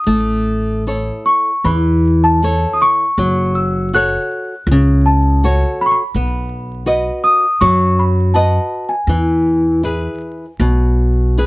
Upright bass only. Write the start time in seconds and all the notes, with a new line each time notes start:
0.07 A1
1.64 E2
3.18 F#1
4.67 C#2
6.14 B1
7.61 F#2
9.07 E2
10.60 B1